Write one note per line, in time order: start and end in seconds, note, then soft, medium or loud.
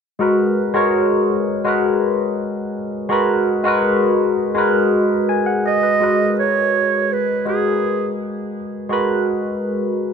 0.19 0.61 G#3 medium
0.19 0.62 F#4 medium
0.19 0.62 A#4 medium
0.19 0.63 B4 medium
0.73 1.43 G#3 medium
0.73 1.43 F#4 medium
0.73 1.44 A#4 medium
0.73 1.45 C#5 medium
1.64 2.75 G#3 medium
1.64 2.75 F#4 medium
1.64 2.76 A#4 medium
1.64 2.77 B4 medium
3.09 3.51 G#3 medium
3.09 3.51 F#4 medium
3.09 3.52 A#4 medium
3.09 3.53 B4 medium
3.64 4.33 G#3 medium
3.64 4.34 F#4 medium
3.64 4.34 A#4 medium
3.68 4.35 B4 medium
4.55 5.65 G#3 medium
4.55 5.65 F#4 medium
4.55 5.29 A#4 medium
4.55 5.29 B4 medium
5.29 5.46 G#5 medium
5.46 5.63 F#5 medium
5.66 5.82 D#5 medium
5.66 6.34 D#5 medium
5.83 6.02 B4 medium
6.00 7.10 G#3 medium
6.00 7.11 F#4 medium
6.00 7.11 A#4 medium
6.00 7.12 B4 medium
6.39 7.14 C#5 medium
7.13 7.47 B4 medium
7.45 8.55 G#3 medium
7.45 8.56 F#4 medium
7.45 8.15 G#4 medium
7.45 8.56 A#4 medium
7.45 8.57 B4 medium
8.89 10.00 G#3 medium
8.89 10.00 F#4 medium
8.89 10.01 A#4 medium
8.89 10.02 B4 medium